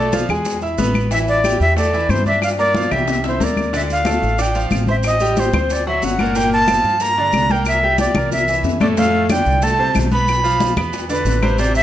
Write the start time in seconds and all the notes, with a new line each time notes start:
Already playing: B1 A3 A4 D5
0.00 A5
0.12 F3 F4 F5, high bongo, high conga, maracas
0.29 E2 G#3 G#4 G#5, high bongo, high conga, low conga, claves, maracas
0.45 high bongo, high conga, maracas
0.61 E4 E5 E6, high conga, maracas
0.78 A1 B3 B4 B5, high bongo, low bongo, high conga, maracas
0.94 high bongo, high conga, claves, maracas
1.11 E3 E4 E5, high bongo, high conga, maracas
1.27 D5, high bongo, high conga, maracas
1.44 G3 G4 G5, high bongo, high conga, claves, maracas
1.60 E2 E5, high bongo, high conga, maracas
1.76 A3 A4 D5 A5, high bongo, high conga, maracas
1.93 E3 E4 E5, high conga, maracas
2.09 G2 C5, high bongo, low bongo, high conga, claves, maracas
2.26 D4 D5 E5 D6, high bongo, high conga, maracas
2.42 F5, high bongo, high conga, claves, maracas
2.58 A#3 A#4 D5 A#5, high bongo, high conga, maracas
2.75 F3 F4 F5, high bongo, high conga, maracas
2.91 C2 G3 G4 E5 G5, high bongo, high conga, low conga, claves, maracas
3.08 low bongo, high conga, maracas
3.24 E4 C5 E5 E6, low bongo, high conga, maracas
3.40 D2 A#3 A#4 D5 A#5, low bongo, high conga, maracas
3.57 low bongo, high conga, claves, maracas
3.73 D3 D4 D5 E5, high bongo, high conga, maracas
3.89 F5, high bongo, high conga, maracas
4.05 A3 A4 A5, high bongo, high conga, claves, maracas
4.22 A1, high bongo, maracas
4.38 D4 D5 G5 D6, high bongo, high conga, maracas
4.55 F3 F4 F5, high bongo, high conga, maracas
4.71 A1, high bongo, low bongo, high conga, claves, maracas
4.87 C4 C5 E5 C6, high conga, maracas
5.03 D#5, high bongo, high conga, claves, maracas
5.20 G3 G4 G5, high bongo, high conga, maracas
5.36 C5, high bongo, high conga, maracas
5.53 D2 C4 C5 C6, high conga, low conga, claves, maracas
5.70 D5, high bongo, high conga, maracas
5.87 F#3 F#4 E5 F#5, high bongo, high conga
6.02 G1 F#5, high bongo, low bongo, high conga, maracas
6.19 A#2 A#3 A#4, high conga, claves, maracas
6.35 A#2 A#3 A#4 G5, high bongo, high conga, maracas
6.51 A5, high bongo, high conga
6.67 F3 F4 F5, high bongo, high conga, claves, maracas
6.83 G2, high bongo, maracas
7.00 A#3 A#4 A#5, high bongo, high conga, maracas
7.17 D3 D4 D5, high bongo, high conga
7.32 C2, high bongo, low bongo, high conga, claves, maracas
7.49 A#3 A#4 G5 A#5, high conga, maracas
7.65 E5, high bongo, high conga, claves, maracas
7.83 G3 G4 G5, high bongo, high conga
7.98 D5, high bongo, high conga, maracas
8.15 C2 A#3 A#4 A#5, high bongo, high conga, low conga, claves, maracas
8.32 E5, high bongo, high conga, low conga, maracas
8.48 E3 E4 E5, high conga, maracas
8.63 F2, low bongo, high conga, maracas
8.80 A2 A3 A4 D5, low bongo, high conga, claves, maracas
8.97 A2 A3 A4 F5, high bongo, maracas
9.14 high bongo, high conga
9.29 D3 D4 D5 G5, high bongo, high conga, claves, maracas
9.45 C2, high bongo, maracas
9.62 A3 A4 A5, high bongo, high conga, maracas
9.79 C3 C4 C5, high bongo, high conga
9.95 B1, high bongo, low bongo, high conga, claves, maracas
10.11 B3 B4 B5, high conga, maracas
10.28 high bongo, high conga, claves, maracas
10.44 F3 F4 F5, high bongo, high conga, maracas
10.60 high bongo, high conga, maracas
10.76 E2 B3 B4 B5, high bongo, high conga, low conga, claves, maracas
10.93 high bongo, high conga, maracas
11.09 D3 D4 B4 D5, high bongo, high conga, maracas
11.25 A1, high bongo, low bongo, high conga, maracas
11.42 C3 C4 C5, high conga, claves, maracas
11.58 C3 C4 C5 D5, high bongo, high conga, maracas
11.75 E5, high bongo, high conga, maracas